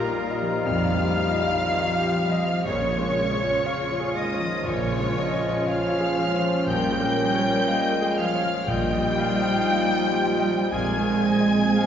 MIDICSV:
0, 0, Header, 1, 12, 480
1, 0, Start_track
1, 0, Tempo, 1047120
1, 304, Tempo, 1000000
1, 1262, Time_signature, 4, 2, 24, 8
1, 4144, Tempo, 1022147
1, 5646, End_track
2, 0, Start_track
2, 0, Title_t, "Violin section"
2, 0, Program_c, 0, 48
2, 0, Note_on_c, 0, 82, 97
2, 281, Note_off_c, 0, 82, 0
2, 297, Note_on_c, 0, 89, 102
2, 1239, Note_off_c, 0, 89, 0
2, 1262, Note_on_c, 0, 85, 111
2, 1967, Note_off_c, 0, 85, 0
2, 1980, Note_on_c, 0, 87, 101
2, 2221, Note_off_c, 0, 87, 0
2, 2225, Note_on_c, 0, 85, 89
2, 2703, Note_off_c, 0, 85, 0
2, 2709, Note_on_c, 0, 89, 109
2, 3185, Note_off_c, 0, 89, 0
2, 3185, Note_on_c, 0, 91, 121
2, 3893, Note_off_c, 0, 91, 0
2, 3917, Note_on_c, 0, 89, 108
2, 4152, Note_on_c, 0, 91, 97
2, 4153, Note_off_c, 0, 89, 0
2, 5106, Note_on_c, 0, 92, 105
2, 5111, Note_off_c, 0, 91, 0
2, 5646, Note_off_c, 0, 92, 0
2, 5646, End_track
3, 0, Start_track
3, 0, Title_t, "Flute"
3, 0, Program_c, 1, 73
3, 0, Note_on_c, 1, 70, 98
3, 310, Note_on_c, 1, 77, 108
3, 317, Note_off_c, 1, 70, 0
3, 1261, Note_off_c, 1, 77, 0
3, 1264, Note_on_c, 1, 73, 107
3, 1983, Note_on_c, 1, 75, 93
3, 1990, Note_off_c, 1, 73, 0
3, 2222, Note_on_c, 1, 73, 90
3, 2229, Note_off_c, 1, 75, 0
3, 2572, Note_off_c, 1, 73, 0
3, 2704, Note_on_c, 1, 77, 94
3, 3163, Note_off_c, 1, 77, 0
3, 3184, Note_on_c, 1, 79, 111
3, 3912, Note_on_c, 1, 77, 98
3, 3920, Note_off_c, 1, 79, 0
3, 4157, Note_on_c, 1, 79, 109
3, 4164, Note_off_c, 1, 77, 0
3, 5113, Note_on_c, 1, 80, 103
3, 5120, Note_off_c, 1, 79, 0
3, 5646, Note_off_c, 1, 80, 0
3, 5646, End_track
4, 0, Start_track
4, 0, Title_t, "Violin section"
4, 0, Program_c, 2, 48
4, 0, Note_on_c, 2, 70, 85
4, 285, Note_off_c, 2, 70, 0
4, 306, Note_on_c, 2, 77, 116
4, 1244, Note_off_c, 2, 77, 0
4, 1267, Note_on_c, 2, 73, 91
4, 1969, Note_off_c, 2, 73, 0
4, 1986, Note_on_c, 2, 75, 79
4, 2224, Note_off_c, 2, 75, 0
4, 2224, Note_on_c, 2, 73, 98
4, 2702, Note_off_c, 2, 73, 0
4, 2706, Note_on_c, 2, 77, 85
4, 3183, Note_off_c, 2, 77, 0
4, 3185, Note_on_c, 2, 79, 96
4, 3893, Note_off_c, 2, 79, 0
4, 3914, Note_on_c, 2, 77, 96
4, 4150, Note_on_c, 2, 79, 114
4, 4151, Note_off_c, 2, 77, 0
4, 5106, Note_on_c, 2, 80, 99
4, 5110, Note_off_c, 2, 79, 0
4, 5646, Note_off_c, 2, 80, 0
4, 5646, End_track
5, 0, Start_track
5, 0, Title_t, "Clarinet"
5, 0, Program_c, 3, 71
5, 0, Note_on_c, 3, 77, 85
5, 1260, Note_off_c, 3, 77, 0
5, 1267, Note_on_c, 3, 73, 79
5, 1744, Note_on_c, 3, 77, 84
5, 1751, Note_off_c, 3, 73, 0
5, 2092, Note_off_c, 3, 77, 0
5, 2230, Note_on_c, 3, 73, 85
5, 2480, Note_on_c, 3, 75, 76
5, 2487, Note_off_c, 3, 73, 0
5, 2713, Note_on_c, 3, 73, 88
5, 2720, Note_off_c, 3, 75, 0
5, 2952, Note_on_c, 3, 72, 73
5, 2959, Note_off_c, 3, 73, 0
5, 3194, Note_on_c, 3, 70, 76
5, 3201, Note_off_c, 3, 72, 0
5, 3678, Note_on_c, 3, 75, 85
5, 3685, Note_off_c, 3, 70, 0
5, 3917, Note_on_c, 3, 73, 67
5, 3925, Note_off_c, 3, 75, 0
5, 4163, Note_on_c, 3, 75, 84
5, 4170, Note_off_c, 3, 73, 0
5, 4396, Note_on_c, 3, 77, 86
5, 4403, Note_off_c, 3, 75, 0
5, 4640, Note_on_c, 3, 79, 104
5, 4647, Note_off_c, 3, 77, 0
5, 5115, Note_off_c, 3, 79, 0
5, 5119, Note_on_c, 3, 77, 76
5, 5353, Note_on_c, 3, 75, 78
5, 5360, Note_off_c, 3, 77, 0
5, 5507, Note_off_c, 3, 75, 0
5, 5598, Note_on_c, 3, 77, 80
5, 5646, Note_off_c, 3, 77, 0
5, 5646, End_track
6, 0, Start_track
6, 0, Title_t, "Grand piano"
6, 0, Program_c, 4, 0
6, 0, Control_c, 4, 64, 127
6, 0, Note_on_c, 4, 34, 61
6, 0, Note_on_c, 4, 55, 56
6, 0, Note_on_c, 4, 67, 53
6, 0, Note_on_c, 4, 75, 56
6, 0, Note_on_c, 4, 77, 64
6, 83, Note_off_c, 4, 77, 0
6, 143, Note_off_c, 4, 75, 0
6, 143, Note_on_c, 4, 75, 50
6, 243, Note_off_c, 4, 67, 0
6, 286, Note_off_c, 4, 34, 0
6, 299, Note_on_c, 4, 41, 63
6, 400, Note_off_c, 4, 75, 0
6, 459, Note_off_c, 4, 55, 0
6, 459, Note_on_c, 4, 55, 50
6, 558, Note_off_c, 4, 41, 0
6, 616, Note_on_c, 4, 75, 55
6, 716, Note_off_c, 4, 55, 0
6, 779, Note_on_c, 4, 77, 67
6, 875, Note_off_c, 4, 75, 0
6, 933, Note_on_c, 4, 67, 60
6, 1037, Note_off_c, 4, 77, 0
6, 1097, Note_on_c, 4, 75, 67
6, 1194, Note_off_c, 4, 67, 0
6, 1256, Note_on_c, 4, 34, 64
6, 1259, Note_off_c, 4, 75, 0
6, 1270, Control_c, 4, 64, 0
6, 1349, Control_c, 4, 64, 127
6, 1418, Note_on_c, 4, 56, 59
6, 1577, Note_on_c, 4, 73, 59
6, 1676, Note_off_c, 4, 56, 0
6, 1741, Note_on_c, 4, 77, 65
6, 1835, Note_off_c, 4, 73, 0
6, 1905, Note_on_c, 4, 68, 57
6, 1997, Note_off_c, 4, 77, 0
6, 2066, Note_on_c, 4, 73, 50
6, 2159, Note_off_c, 4, 68, 0
6, 2199, Note_off_c, 4, 34, 0
6, 2226, Note_on_c, 4, 34, 62
6, 2320, Note_off_c, 4, 73, 0
6, 2386, Note_on_c, 4, 56, 57
6, 2546, Note_on_c, 4, 73, 58
6, 2639, Note_off_c, 4, 56, 0
6, 2709, Note_on_c, 4, 77, 60
6, 2799, Note_off_c, 4, 73, 0
6, 2865, Note_on_c, 4, 68, 56
6, 2960, Note_off_c, 4, 77, 0
6, 3030, Note_on_c, 4, 61, 67
6, 3119, Note_off_c, 4, 68, 0
6, 3164, Note_off_c, 4, 34, 0
6, 3185, Note_off_c, 4, 61, 0
6, 3189, Control_c, 4, 64, 0
6, 3189, Note_on_c, 4, 34, 59
6, 3259, Control_c, 4, 64, 127
6, 3346, Note_on_c, 4, 58, 59
6, 3513, Note_on_c, 4, 73, 57
6, 3601, Note_off_c, 4, 58, 0
6, 3671, Note_on_c, 4, 77, 62
6, 3766, Note_off_c, 4, 73, 0
6, 3832, Note_on_c, 4, 68, 62
6, 3925, Note_off_c, 4, 77, 0
6, 3994, Note_on_c, 4, 73, 55
6, 4086, Note_off_c, 4, 68, 0
6, 4132, Note_off_c, 4, 34, 0
6, 4151, Note_off_c, 4, 73, 0
6, 4155, Control_c, 4, 64, 0
6, 4158, Note_on_c, 4, 34, 71
6, 4225, Control_c, 4, 64, 127
6, 4317, Note_on_c, 4, 55, 52
6, 4470, Note_on_c, 4, 75, 62
6, 4568, Note_off_c, 4, 55, 0
6, 4635, Note_on_c, 4, 77, 66
6, 4726, Note_off_c, 4, 75, 0
6, 4797, Note_on_c, 4, 67, 55
6, 4889, Note_off_c, 4, 77, 0
6, 4956, Note_on_c, 4, 75, 66
6, 5049, Note_off_c, 4, 67, 0
6, 5095, Note_off_c, 4, 34, 0
6, 5110, Note_on_c, 4, 34, 68
6, 5112, Note_off_c, 4, 75, 0
6, 5116, Control_c, 4, 64, 0
6, 5201, Control_c, 4, 64, 127
6, 5270, Note_on_c, 4, 60, 52
6, 5432, Note_on_c, 4, 75, 50
6, 5526, Note_off_c, 4, 60, 0
6, 5592, Note_on_c, 4, 80, 56
6, 5646, Note_off_c, 4, 34, 0
6, 5646, Note_off_c, 4, 75, 0
6, 5646, Note_off_c, 4, 80, 0
6, 5646, End_track
7, 0, Start_track
7, 0, Title_t, "Harp"
7, 0, Program_c, 5, 46
7, 0, Note_on_c, 5, 46, 69
7, 0, Note_on_c, 5, 53, 52
7, 0, Note_on_c, 5, 55, 56
7, 0, Note_on_c, 5, 58, 58
7, 0, Note_on_c, 5, 63, 64
7, 0, Note_on_c, 5, 65, 61
7, 0, Note_on_c, 5, 67, 68
7, 63, Note_off_c, 5, 63, 0
7, 68, Note_on_c, 5, 63, 62
7, 113, Note_off_c, 5, 58, 0
7, 184, Note_off_c, 5, 53, 0
7, 190, Note_on_c, 5, 53, 52
7, 305, Note_off_c, 5, 55, 0
7, 311, Note_on_c, 5, 55, 64
7, 426, Note_off_c, 5, 53, 0
7, 432, Note_on_c, 5, 53, 60
7, 543, Note_off_c, 5, 63, 0
7, 549, Note_on_c, 5, 63, 64
7, 663, Note_off_c, 5, 65, 0
7, 669, Note_on_c, 5, 65, 55
7, 783, Note_off_c, 5, 67, 0
7, 789, Note_on_c, 5, 67, 67
7, 900, Note_off_c, 5, 65, 0
7, 906, Note_on_c, 5, 65, 46
7, 1020, Note_off_c, 5, 63, 0
7, 1026, Note_on_c, 5, 63, 56
7, 1143, Note_off_c, 5, 53, 0
7, 1148, Note_on_c, 5, 53, 57
7, 1195, Note_off_c, 5, 46, 0
7, 1268, Note_on_c, 5, 46, 78
7, 1283, Note_off_c, 5, 63, 0
7, 1284, Note_off_c, 5, 67, 0
7, 1285, Note_off_c, 5, 55, 0
7, 1506, Note_on_c, 5, 61, 58
7, 1616, Note_off_c, 5, 65, 0
7, 1622, Note_on_c, 5, 65, 53
7, 1859, Note_off_c, 5, 65, 0
7, 1865, Note_on_c, 5, 65, 62
7, 1977, Note_off_c, 5, 61, 0
7, 1983, Note_on_c, 5, 61, 60
7, 2095, Note_off_c, 5, 53, 0
7, 2101, Note_on_c, 5, 53, 63
7, 2219, Note_off_c, 5, 46, 0
7, 2224, Note_on_c, 5, 46, 67
7, 2458, Note_off_c, 5, 61, 0
7, 2463, Note_on_c, 5, 61, 69
7, 2580, Note_off_c, 5, 65, 0
7, 2823, Note_on_c, 5, 65, 53
7, 2938, Note_off_c, 5, 61, 0
7, 2944, Note_on_c, 5, 61, 50
7, 3056, Note_off_c, 5, 53, 0
7, 3062, Note_on_c, 5, 53, 54
7, 3179, Note_off_c, 5, 46, 0
7, 3185, Note_on_c, 5, 46, 76
7, 3301, Note_on_c, 5, 58, 57
7, 3420, Note_off_c, 5, 61, 0
7, 3426, Note_on_c, 5, 61, 61
7, 3540, Note_off_c, 5, 65, 0
7, 3546, Note_on_c, 5, 65, 57
7, 3669, Note_on_c, 5, 70, 62
7, 3784, Note_off_c, 5, 65, 0
7, 3790, Note_on_c, 5, 65, 55
7, 3906, Note_off_c, 5, 61, 0
7, 3912, Note_on_c, 5, 61, 65
7, 4029, Note_off_c, 5, 53, 0
7, 4035, Note_on_c, 5, 53, 57
7, 4149, Note_off_c, 5, 46, 0
7, 4154, Note_on_c, 5, 46, 78
7, 4166, Note_off_c, 5, 58, 0
7, 4169, Note_off_c, 5, 61, 0
7, 4169, Note_off_c, 5, 70, 0
7, 4274, Note_on_c, 5, 55, 61
7, 4394, Note_on_c, 5, 63, 61
7, 4509, Note_off_c, 5, 65, 0
7, 4514, Note_on_c, 5, 65, 58
7, 4634, Note_on_c, 5, 67, 60
7, 4750, Note_off_c, 5, 65, 0
7, 4755, Note_on_c, 5, 65, 54
7, 4872, Note_off_c, 5, 63, 0
7, 4878, Note_on_c, 5, 63, 55
7, 4992, Note_off_c, 5, 53, 0
7, 4998, Note_on_c, 5, 53, 59
7, 5108, Note_off_c, 5, 46, 0
7, 5114, Note_on_c, 5, 46, 71
7, 5131, Note_off_c, 5, 65, 0
7, 5131, Note_off_c, 5, 67, 0
7, 5132, Note_off_c, 5, 53, 0
7, 5132, Note_off_c, 5, 55, 0
7, 5233, Note_on_c, 5, 60, 57
7, 5342, Note_off_c, 5, 63, 0
7, 5348, Note_on_c, 5, 63, 61
7, 5592, Note_on_c, 5, 72, 64
7, 5646, Note_off_c, 5, 46, 0
7, 5646, Note_off_c, 5, 60, 0
7, 5646, Note_off_c, 5, 63, 0
7, 5646, Note_off_c, 5, 72, 0
7, 5646, End_track
8, 0, Start_track
8, 0, Title_t, "French horn section"
8, 0, Program_c, 6, 60
8, 0, Note_on_c, 6, 55, 96
8, 0, Note_on_c, 6, 63, 98
8, 1243, Note_off_c, 6, 63, 0
8, 1245, Note_off_c, 6, 55, 0
8, 1261, Note_on_c, 6, 61, 94
8, 1264, Note_on_c, 6, 53, 96
8, 4071, Note_off_c, 6, 53, 0
8, 4071, Note_off_c, 6, 61, 0
8, 4152, Note_on_c, 6, 63, 98
8, 4153, Note_on_c, 6, 53, 91
8, 5092, Note_off_c, 6, 63, 0
8, 5093, Note_off_c, 6, 53, 0
8, 5104, Note_on_c, 6, 56, 98
8, 5106, Note_on_c, 6, 60, 99
8, 5646, Note_off_c, 6, 56, 0
8, 5646, Note_off_c, 6, 60, 0
8, 5646, End_track
9, 0, Start_track
9, 0, Title_t, "Viola section"
9, 0, Program_c, 7, 48
9, 0, Note_on_c, 7, 53, 71
9, 0, Note_on_c, 7, 65, 90
9, 67, Note_off_c, 7, 53, 0
9, 70, Note_on_c, 7, 55, 62
9, 189, Note_off_c, 7, 55, 0
9, 190, Note_on_c, 7, 53, 63
9, 306, Note_off_c, 7, 53, 0
9, 306, Note_on_c, 7, 51, 74
9, 418, Note_off_c, 7, 51, 0
9, 426, Note_on_c, 7, 53, 63
9, 545, Note_off_c, 7, 53, 0
9, 547, Note_on_c, 7, 55, 69
9, 665, Note_off_c, 7, 55, 0
9, 666, Note_on_c, 7, 53, 63
9, 779, Note_on_c, 7, 51, 69
9, 784, Note_off_c, 7, 53, 0
9, 899, Note_on_c, 7, 53, 64
9, 901, Note_off_c, 7, 51, 0
9, 1021, Note_off_c, 7, 53, 0
9, 1023, Note_on_c, 7, 55, 62
9, 1142, Note_on_c, 7, 53, 68
9, 1143, Note_off_c, 7, 55, 0
9, 1255, Note_off_c, 7, 65, 0
9, 1261, Note_on_c, 7, 49, 82
9, 1261, Note_on_c, 7, 65, 89
9, 1262, Note_off_c, 7, 53, 0
9, 1373, Note_off_c, 7, 49, 0
9, 1381, Note_on_c, 7, 53, 66
9, 1502, Note_off_c, 7, 53, 0
9, 1504, Note_on_c, 7, 56, 66
9, 1621, Note_on_c, 7, 53, 64
9, 1623, Note_off_c, 7, 56, 0
9, 1739, Note_on_c, 7, 49, 74
9, 1741, Note_off_c, 7, 53, 0
9, 1858, Note_on_c, 7, 53, 70
9, 1860, Note_off_c, 7, 49, 0
9, 1975, Note_on_c, 7, 56, 64
9, 1980, Note_off_c, 7, 53, 0
9, 2098, Note_off_c, 7, 56, 0
9, 2099, Note_on_c, 7, 53, 64
9, 2220, Note_off_c, 7, 53, 0
9, 2223, Note_on_c, 7, 49, 72
9, 2334, Note_off_c, 7, 49, 0
9, 2342, Note_on_c, 7, 53, 62
9, 2461, Note_off_c, 7, 53, 0
9, 2462, Note_on_c, 7, 56, 67
9, 2577, Note_on_c, 7, 53, 68
9, 2581, Note_off_c, 7, 56, 0
9, 2698, Note_on_c, 7, 49, 74
9, 2699, Note_off_c, 7, 53, 0
9, 2818, Note_on_c, 7, 53, 66
9, 2819, Note_off_c, 7, 49, 0
9, 2939, Note_off_c, 7, 53, 0
9, 2945, Note_on_c, 7, 56, 62
9, 3062, Note_off_c, 7, 56, 0
9, 3067, Note_on_c, 7, 53, 69
9, 3177, Note_off_c, 7, 53, 0
9, 3182, Note_on_c, 7, 53, 82
9, 3293, Note_off_c, 7, 53, 0
9, 3302, Note_on_c, 7, 56, 71
9, 3421, Note_on_c, 7, 58, 61
9, 3422, Note_off_c, 7, 56, 0
9, 3542, Note_off_c, 7, 58, 0
9, 3547, Note_on_c, 7, 61, 67
9, 3665, Note_off_c, 7, 61, 0
9, 3667, Note_on_c, 7, 58, 73
9, 3785, Note_on_c, 7, 56, 69
9, 3786, Note_off_c, 7, 58, 0
9, 3906, Note_off_c, 7, 56, 0
9, 3908, Note_on_c, 7, 53, 68
9, 4026, Note_on_c, 7, 56, 69
9, 4027, Note_off_c, 7, 53, 0
9, 4127, Note_off_c, 7, 65, 0
9, 4147, Note_off_c, 7, 56, 0
9, 4147, Note_on_c, 7, 53, 71
9, 4147, Note_on_c, 7, 65, 88
9, 4257, Note_off_c, 7, 53, 0
9, 4263, Note_on_c, 7, 55, 68
9, 4384, Note_off_c, 7, 55, 0
9, 4387, Note_on_c, 7, 58, 74
9, 4506, Note_off_c, 7, 58, 0
9, 4511, Note_on_c, 7, 63, 66
9, 4630, Note_off_c, 7, 63, 0
9, 4635, Note_on_c, 7, 58, 73
9, 4752, Note_off_c, 7, 58, 0
9, 4754, Note_on_c, 7, 55, 65
9, 4872, Note_off_c, 7, 55, 0
9, 4874, Note_on_c, 7, 53, 63
9, 4991, Note_off_c, 7, 53, 0
9, 4993, Note_on_c, 7, 55, 64
9, 5089, Note_off_c, 7, 65, 0
9, 5110, Note_off_c, 7, 55, 0
9, 5112, Note_on_c, 7, 48, 86
9, 5112, Note_on_c, 7, 68, 84
9, 5222, Note_off_c, 7, 48, 0
9, 5229, Note_on_c, 7, 51, 74
9, 5349, Note_off_c, 7, 51, 0
9, 5351, Note_on_c, 7, 56, 67
9, 5470, Note_off_c, 7, 56, 0
9, 5470, Note_on_c, 7, 60, 62
9, 5589, Note_off_c, 7, 60, 0
9, 5590, Note_on_c, 7, 56, 69
9, 5646, Note_off_c, 7, 56, 0
9, 5646, Note_off_c, 7, 68, 0
9, 5646, End_track
10, 0, Start_track
10, 0, Title_t, "Cello section"
10, 0, Program_c, 8, 48
10, 0, Note_on_c, 8, 46, 96
10, 286, Note_off_c, 8, 46, 0
10, 305, Note_on_c, 8, 53, 99
10, 1260, Note_on_c, 8, 49, 85
10, 1263, Note_off_c, 8, 53, 0
10, 1980, Note_off_c, 8, 49, 0
10, 1981, Note_on_c, 8, 51, 81
10, 2216, Note_off_c, 8, 51, 0
10, 2225, Note_on_c, 8, 49, 89
10, 2703, Note_off_c, 8, 49, 0
10, 2705, Note_on_c, 8, 53, 100
10, 3182, Note_off_c, 8, 53, 0
10, 3186, Note_on_c, 8, 55, 108
10, 3894, Note_off_c, 8, 55, 0
10, 3911, Note_on_c, 8, 53, 91
10, 4150, Note_off_c, 8, 53, 0
10, 4150, Note_on_c, 8, 55, 102
10, 5110, Note_off_c, 8, 55, 0
10, 5111, Note_on_c, 8, 56, 102
10, 5646, Note_off_c, 8, 56, 0
10, 5646, End_track
11, 0, Start_track
11, 0, Title_t, "Timpani"
11, 0, Program_c, 10, 47
11, 3185, Note_on_c, 10, 46, 87
11, 3889, Note_off_c, 10, 46, 0
11, 4149, Note_on_c, 10, 46, 86
11, 4851, Note_off_c, 10, 46, 0
11, 5646, End_track
12, 0, Start_track
12, 0, Title_t, "Double bass section"
12, 0, Program_c, 11, 48
12, 308, Note_on_c, 11, 34, 96
12, 705, Note_off_c, 11, 34, 0
12, 1262, Note_on_c, 11, 34, 84
12, 1662, Note_off_c, 11, 34, 0
12, 2219, Note_on_c, 11, 34, 90
12, 2620, Note_off_c, 11, 34, 0
12, 3180, Note_on_c, 11, 34, 78
12, 3583, Note_off_c, 11, 34, 0
12, 4153, Note_on_c, 11, 34, 85
12, 4549, Note_off_c, 11, 34, 0
12, 5111, Note_on_c, 11, 34, 86
12, 5510, Note_off_c, 11, 34, 0
12, 5646, End_track
0, 0, End_of_file